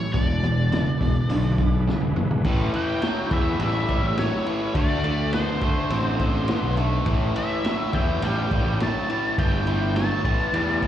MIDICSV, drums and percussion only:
0, 0, Header, 1, 2, 480
1, 0, Start_track
1, 0, Tempo, 577478
1, 111, Time_signature, 4, 2, 24, 8
1, 9038, End_track
2, 0, Start_track
2, 0, Title_t, "Drums"
2, 118, Note_on_c, 9, 36, 112
2, 122, Note_on_c, 9, 46, 60
2, 201, Note_off_c, 9, 36, 0
2, 206, Note_off_c, 9, 46, 0
2, 361, Note_on_c, 9, 46, 47
2, 444, Note_off_c, 9, 46, 0
2, 598, Note_on_c, 9, 46, 67
2, 610, Note_on_c, 9, 38, 103
2, 681, Note_off_c, 9, 46, 0
2, 693, Note_off_c, 9, 38, 0
2, 835, Note_on_c, 9, 46, 49
2, 837, Note_on_c, 9, 36, 78
2, 918, Note_off_c, 9, 46, 0
2, 920, Note_off_c, 9, 36, 0
2, 1076, Note_on_c, 9, 46, 65
2, 1159, Note_off_c, 9, 46, 0
2, 1316, Note_on_c, 9, 36, 76
2, 1317, Note_on_c, 9, 46, 44
2, 1399, Note_off_c, 9, 36, 0
2, 1401, Note_off_c, 9, 46, 0
2, 1569, Note_on_c, 9, 38, 60
2, 1652, Note_off_c, 9, 38, 0
2, 1674, Note_on_c, 9, 48, 55
2, 1757, Note_off_c, 9, 48, 0
2, 1795, Note_on_c, 9, 45, 78
2, 1878, Note_off_c, 9, 45, 0
2, 1916, Note_on_c, 9, 43, 73
2, 1999, Note_off_c, 9, 43, 0
2, 2031, Note_on_c, 9, 49, 97
2, 2033, Note_on_c, 9, 36, 102
2, 2114, Note_off_c, 9, 49, 0
2, 2116, Note_off_c, 9, 36, 0
2, 2272, Note_on_c, 9, 51, 60
2, 2355, Note_off_c, 9, 51, 0
2, 2507, Note_on_c, 9, 51, 83
2, 2518, Note_on_c, 9, 38, 106
2, 2590, Note_off_c, 9, 51, 0
2, 2601, Note_off_c, 9, 38, 0
2, 2749, Note_on_c, 9, 51, 60
2, 2751, Note_on_c, 9, 36, 83
2, 2832, Note_off_c, 9, 51, 0
2, 2834, Note_off_c, 9, 36, 0
2, 2988, Note_on_c, 9, 51, 81
2, 3071, Note_off_c, 9, 51, 0
2, 3228, Note_on_c, 9, 51, 56
2, 3230, Note_on_c, 9, 36, 77
2, 3312, Note_off_c, 9, 51, 0
2, 3313, Note_off_c, 9, 36, 0
2, 3470, Note_on_c, 9, 51, 87
2, 3482, Note_on_c, 9, 38, 105
2, 3553, Note_off_c, 9, 51, 0
2, 3565, Note_off_c, 9, 38, 0
2, 3710, Note_on_c, 9, 51, 64
2, 3793, Note_off_c, 9, 51, 0
2, 3949, Note_on_c, 9, 51, 90
2, 3950, Note_on_c, 9, 36, 106
2, 4032, Note_off_c, 9, 51, 0
2, 4033, Note_off_c, 9, 36, 0
2, 4191, Note_on_c, 9, 51, 62
2, 4274, Note_off_c, 9, 51, 0
2, 4429, Note_on_c, 9, 51, 86
2, 4440, Note_on_c, 9, 38, 104
2, 4512, Note_off_c, 9, 51, 0
2, 4523, Note_off_c, 9, 38, 0
2, 4666, Note_on_c, 9, 51, 66
2, 4668, Note_on_c, 9, 36, 84
2, 4749, Note_off_c, 9, 51, 0
2, 4751, Note_off_c, 9, 36, 0
2, 4907, Note_on_c, 9, 51, 91
2, 4990, Note_off_c, 9, 51, 0
2, 5148, Note_on_c, 9, 51, 66
2, 5149, Note_on_c, 9, 36, 77
2, 5231, Note_off_c, 9, 51, 0
2, 5232, Note_off_c, 9, 36, 0
2, 5383, Note_on_c, 9, 51, 94
2, 5395, Note_on_c, 9, 38, 112
2, 5467, Note_off_c, 9, 51, 0
2, 5478, Note_off_c, 9, 38, 0
2, 5626, Note_on_c, 9, 51, 64
2, 5709, Note_off_c, 9, 51, 0
2, 5866, Note_on_c, 9, 51, 96
2, 5870, Note_on_c, 9, 36, 105
2, 5949, Note_off_c, 9, 51, 0
2, 5953, Note_off_c, 9, 36, 0
2, 6114, Note_on_c, 9, 51, 70
2, 6197, Note_off_c, 9, 51, 0
2, 6352, Note_on_c, 9, 51, 90
2, 6363, Note_on_c, 9, 38, 104
2, 6435, Note_off_c, 9, 51, 0
2, 6446, Note_off_c, 9, 38, 0
2, 6589, Note_on_c, 9, 51, 65
2, 6592, Note_on_c, 9, 36, 83
2, 6673, Note_off_c, 9, 51, 0
2, 6675, Note_off_c, 9, 36, 0
2, 6833, Note_on_c, 9, 51, 90
2, 6916, Note_off_c, 9, 51, 0
2, 7073, Note_on_c, 9, 51, 57
2, 7074, Note_on_c, 9, 36, 75
2, 7156, Note_off_c, 9, 51, 0
2, 7158, Note_off_c, 9, 36, 0
2, 7316, Note_on_c, 9, 51, 85
2, 7327, Note_on_c, 9, 38, 108
2, 7399, Note_off_c, 9, 51, 0
2, 7411, Note_off_c, 9, 38, 0
2, 7560, Note_on_c, 9, 51, 64
2, 7643, Note_off_c, 9, 51, 0
2, 7798, Note_on_c, 9, 36, 110
2, 7799, Note_on_c, 9, 51, 86
2, 7881, Note_off_c, 9, 36, 0
2, 7882, Note_off_c, 9, 51, 0
2, 8036, Note_on_c, 9, 51, 64
2, 8120, Note_off_c, 9, 51, 0
2, 8277, Note_on_c, 9, 51, 81
2, 8288, Note_on_c, 9, 38, 109
2, 8360, Note_off_c, 9, 51, 0
2, 8372, Note_off_c, 9, 38, 0
2, 8517, Note_on_c, 9, 36, 82
2, 8519, Note_on_c, 9, 51, 67
2, 8600, Note_off_c, 9, 36, 0
2, 8602, Note_off_c, 9, 51, 0
2, 8757, Note_on_c, 9, 51, 92
2, 8840, Note_off_c, 9, 51, 0
2, 8995, Note_on_c, 9, 36, 76
2, 8995, Note_on_c, 9, 51, 60
2, 9038, Note_off_c, 9, 36, 0
2, 9038, Note_off_c, 9, 51, 0
2, 9038, End_track
0, 0, End_of_file